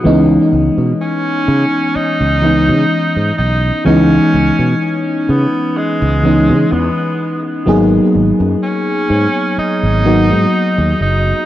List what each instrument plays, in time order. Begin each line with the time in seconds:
0.04 fretless electric bass C#2, fm electric piano E3 G#3 B3 C#4 D#4
0.53 fretless electric bass C#2
0.78 fretless electric bass B2
1.01 tenor saxophone C#4
1.48 fretless electric bass C#3
1.96 tenor saxophone D#4, muted fretless electric bass stroke
2.21 fretless electric bass C#2
2.42 fm electric piano E3 G#3 B3 C#4 D#4
2.69 fretless electric bass C#3
3.16 fretless electric bass G#2
3.38 fretless electric bass B1, tenor saxophone D#4
3.84 fretless electric bass C#2, fm electric piano E3 G#3 B3 C#4 D#4, tenor saxophone C#4
4.34 fretless electric bass C#2
4.59 fretless electric bass B2
5.28 fretless electric bass C#3, tenor saxophone B3
5.77 tenor saxophone G#3
6.02 fretless electric bass C#2
6.23 fm electric piano E3 G#3 B3 C#4 D#4
6.50 fretless electric bass C#3
6.72 fretless electric bass E2, tenor saxophone B3
7.66 fretless electric bass G#1, fm electric piano F#3 A#3 B3 D#4 G#4
8.15 fretless electric bass G#1
8.40 fretless electric bass F#2
8.63 tenor saxophone C#4
9.10 fretless electric bass G#2
9.58 tenor saxophone D#4, muted fretless electric bass stroke
9.83 fretless electric bass G#1
10.04 fm electric piano F#3 A#3 B3 D#4 F#4
10.30 fretless electric bass G#2
10.78 fretless electric bass D#2
11.01 fretless electric bass F#1, tenor saxophone D#4